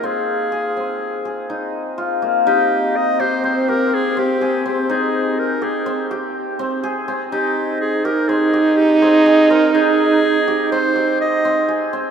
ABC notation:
X:1
M:5/4
L:1/8
Q:1/4=124
K:Ab
V:1 name="Clarinet"
A8 z2 | G2 e c c B A G2 G | A2 B A2 z4 z | G2 A B A2 G A2 B |
A4 c2 e3 z |]
V:2 name="Hammered dulcimer"
C2 A C2 A E2 F B, | E2 z G C G2 C A C | E2 z G C G2 C A C | E2 z G C G2 C A C |
E2 z G C G2 C A C |]
V:3 name="French horn"
z8 z2 | C8- C2- | C8- C z | E8- E2- |
E8- E z |]